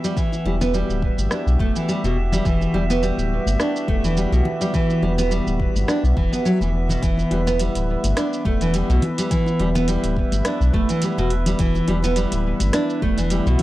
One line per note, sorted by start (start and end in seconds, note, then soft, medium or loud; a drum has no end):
0.00 13.63 E3 medium
0.00 13.63 B3 medium
0.00 6.99 F#4 medium
0.00 7.02 G4 medium
0.00 13.63 E5 medium
0.04 0.16 G3 medium
0.04 shaker medium
0.17 0.44 E3 medium
0.17 kick loud
0.17 shaker soft
0.32 high bongo soft
0.32 shaker soft
0.45 0.83 E1 medium
0.45 0.54 G3 medium
0.45 high bongo soft
0.61 0.73 B3 loud
0.61 high bongo medium
0.61 low conga medium
0.61 shaker medium
0.74 1.30 G3 medium
0.74 shaker medium
0.89 1.10 D1 medium
0.89 shaker soft
1.02 kick medium
1.18 1.27 G1 medium
1.18 high conga medium
1.18 shaker medium
1.31 1.58 D4 medium
1.31 cross-stick medium
1.31 shaker medium
1.46 1.56 B1 medium
1.46 shaker soft
1.59 1.71 E1 loud
1.59 1.75 A3 medium
1.59 kick loud
1.76 1.88 E3 medium
1.76 shaker medium
1.89 2.03 G3 medium
1.89 shaker medium
2.04 2.40 E1 medium
2.04 2.16 B2 medium
2.04 high conga medium
2.04 shaker soft
2.32 2.45 G3 medium
2.32 low conga medium
2.32 shaker medium
2.45 2.67 E1 medium
2.45 2.73 E3 medium
2.45 kick loud
2.45 shaker soft
2.61 high bongo soft
2.61 shaker soft
2.74 3.11 E1 medium
2.74 2.83 G3 medium
2.74 high bongo soft
2.90 3.01 B3 medium
2.90 high bongo soft
2.90 shaker medium
3.03 3.58 G3 medium
3.03 shaker medium
3.18 3.38 D1 medium
3.18 high conga soft
3.18 shaker soft
3.46 3.56 G1 medium
3.46 high conga medium
3.46 shaker medium
3.60 3.87 D4 medium
3.60 cross-stick medium
3.60 shaker medium
3.76 shaker soft
3.88 4.26 E1 medium
3.88 4.03 A3 medium
3.88 kick loud
3.88 high conga medium
4.04 4.16 E3 medium
4.04 shaker medium
4.17 4.31 G3 medium
4.17 shaker medium
4.32 4.42 B1 loud
4.32 4.45 B2 medium
4.32 high conga medium
4.32 shaker soft
4.45 high bongo soft
4.45 low conga medium
4.61 4.73 G3 medium
4.61 shaker medium
4.74 5.01 E3 medium
4.74 kick loud
4.74 shaker medium
4.90 high bongo soft
4.90 shaker soft
5.02 5.40 E1 medium
5.02 5.11 G3 medium
5.02 high bongo soft
5.18 5.30 B3 loud
5.18 high bongo soft
5.18 low conga medium
5.18 shaker medium
5.31 5.87 G3 medium
5.31 shaker medium
5.47 5.67 D1 medium
5.47 high conga soft
5.47 shaker soft
5.60 kick medium
5.75 5.85 G1 medium
5.75 high conga medium
5.75 shaker medium
5.88 6.02 D4 medium
5.88 cross-stick medium
5.88 shaker medium
6.03 6.13 B1 loud
6.03 shaker soft
6.17 6.28 E1 loud
6.17 6.32 E3 medium
6.17 kick loud
6.33 6.44 B3 medium
6.33 shaker medium
6.45 6.60 F#3 medium
6.45 shaker medium
6.61 6.97 E1 medium
6.61 6.68 E3 medium
6.61 high conga medium
6.61 shaker soft
6.89 7.01 B2 medium
6.89 low conga medium
6.89 shaker medium
7.02 7.24 E1 medium
7.02 7.30 E3 medium
7.02 13.63 E4 medium
7.02 13.63 B4 medium
7.02 kick loud
7.02 closed hi-hat soft
7.02 shaker soft
7.18 high bongo soft
7.18 shaker soft
7.31 7.69 E1 medium
7.31 7.40 G3 medium
7.31 closed hi-hat soft
7.31 high bongo soft
7.47 7.58 B3 loud
7.47 high bongo medium
7.47 shaker medium
7.60 8.16 G3 medium
7.60 closed hi-hat soft
7.60 shaker soft
7.75 7.96 D1 medium
7.75 closed hi-hat soft
7.75 high conga soft
7.75 shaker soft
8.04 8.13 G1 medium
8.04 closed hi-hat soft
8.04 high conga medium
8.04 shaker medium
8.17 8.44 D4 medium
8.17 cross-stick medium
8.17 closed hi-hat soft
8.17 shaker medium
8.33 shaker soft
8.45 8.83 E1 medium
8.45 8.60 A3 medium
8.45 kick loud
8.45 high conga medium
8.61 8.73 E3 medium
8.61 closed hi-hat soft
8.61 shaker medium
8.74 8.88 G3 medium
8.74 closed hi-hat soft
8.74 shaker medium
8.89 8.99 B1 loud
8.89 9.02 B2 medium
8.89 high conga medium
8.89 shaker soft
9.02 closed hi-hat soft
9.02 high bongo soft
9.02 low conga medium
9.18 9.30 G3 medium
9.18 closed hi-hat soft
9.18 shaker medium
9.31 9.58 E3 medium
9.31 kick loud
9.31 closed hi-hat medium
9.31 shaker soft
9.46 high bongo soft
9.46 shaker soft
9.59 9.97 E1 medium
9.59 9.69 G3 medium
9.59 closed hi-hat soft
9.59 high bongo soft
9.75 9.87 B3 loud
9.75 high bongo soft
9.75 low conga medium
9.75 shaker medium
9.88 10.44 G3 medium
9.88 closed hi-hat medium
9.88 shaker medium
10.04 10.24 D1 medium
10.04 closed hi-hat soft
10.04 shaker soft
10.16 kick medium
10.32 10.42 G1 medium
10.32 closed hi-hat soft
10.32 high conga medium
10.32 shaker medium
10.45 10.73 D4 medium
10.45 cross-stick medium
10.45 closed hi-hat medium
10.45 shaker soft
10.60 10.70 B1 loud
10.60 shaker soft
10.74 10.85 E1 loud
10.74 10.89 A3 medium
10.74 kick loud
10.89 11.02 E3 medium
10.89 closed hi-hat soft
10.89 shaker medium
11.02 11.17 G3 medium
11.02 closed hi-hat medium
11.02 shaker medium
11.18 11.54 E1 medium
11.18 11.30 B2 medium
11.18 high conga medium
11.18 shaker soft
11.30 closed hi-hat soft
11.46 11.59 G3 medium
11.46 closed hi-hat soft
11.46 low conga medium
11.46 shaker medium
11.59 11.81 E1 loud
11.59 11.87 E3 medium
11.59 kick loud
11.59 closed hi-hat medium
11.59 shaker soft
11.75 high bongo soft
11.75 shaker soft
11.88 12.26 E1 medium
11.88 11.97 G3 medium
11.88 closed hi-hat soft
11.88 high bongo medium
12.03 12.15 B3 loud
12.03 high bongo soft
12.03 shaker medium
12.16 12.72 G3 medium
12.16 closed hi-hat medium
12.16 shaker soft
12.31 12.53 D1 medium
12.31 closed hi-hat soft
12.31 high conga soft
12.31 shaker soft
12.60 12.70 G1 medium
12.60 closed hi-hat soft
12.60 high conga medium
12.60 shaker medium
12.73 13.01 D4 medium
12.73 cross-stick medium
12.73 closed hi-hat medium
12.73 shaker soft
12.90 shaker soft
13.02 13.40 E1 medium
13.02 13.17 A3 medium
13.02 kick medium
13.02 high conga medium
13.18 13.30 E3 medium
13.18 closed hi-hat soft
13.18 shaker medium
13.30 13.45 G3 medium
13.30 closed hi-hat medium
13.30 shaker medium
13.46 13.56 B1 loud
13.46 13.59 B2 medium
13.46 high conga medium
13.46 shaker soft
13.59 closed hi-hat soft
13.59 high bongo soft
13.59 low conga medium